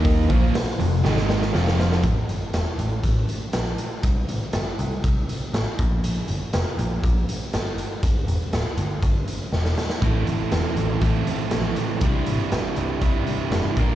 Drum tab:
HH |o-o-o-o---------|x-x-x-x-x-x-x-x-|x-x-x-x-x-x-x-x-|x-x-x-x-x-x-x-x-|
SD |----o---oooooooo|----o-------o---|----o-------o---|----o-------o---|
BD |o-o-------------|o-------o-------|o-------o-----o-|--------o-------|

HH |x-x-x-x-x-x-----|x-x-x-x-x-x-x-x-|x-x-x-x-x-x-x-x-|
SD |----o-------oooo|----o-------o---|----o-------o---|
BD |o-------o-------|o-------o-------|o-------o-----o-|